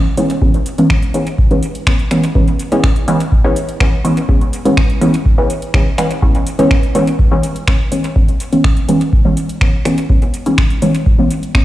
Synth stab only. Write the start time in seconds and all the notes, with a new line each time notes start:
0.18 E3 G#3 B3 C#4
0.42 E3 G#3 B3 C#4
0.78 E3 G#3 B3 C#4
1.14 E3 G#3 B3 C#4
1.51 E3 G#3 B3 C#4
1.87 E3 G#3 B3 C#4
2.11 E3 G#3 B3 C#4
2.35 E3 G#3 B3 C#4
2.72 E3 G#3 B3 C#4
3.08 E3 G#3 B3 C#4
3.44 E3 G#3 B3 C#4
3.80 E3 G#3 B3 C#4
4.05 E3 G#3 B3 C#4
4.29 E3 G#3 B3 C#4
4.65 E3 G#3 B3 C#4
5.01 E3 G#3 B3 C#4
5.38 E3 G#3 B3 C#4
5.74 E3 G#3 B3 C#4
5.98 E3 G#3 B3 C#4
6.22 E3 G#3 B3 C#4
6.59 E3 G#3 B3 C#4
6.95 E3 G#3 B3 C#4
7.32 E3 G#3 B3 C#4
7.68 E3 G#3 B3 C#4
7.92 E3 G#3 B3 C#4
8.16 E3 G#3 B3 C#4
8.53 E3 G#3 B3 C#4
8.88 E3 G#3 B3 C#4
9.25 E3 G#3 B3 C#4
9.61 E3 G#3 B3 C#4
9.85 E3 G#3 B3 C#4
10.10 E3 G#3 B3 C#4
10.46 E3 G#3 B3 C#4
10.82 E3 G#3 B3 C#4
11.19 E3 G#3 B3 C#4
11.55 E3 G#3 B3 C#4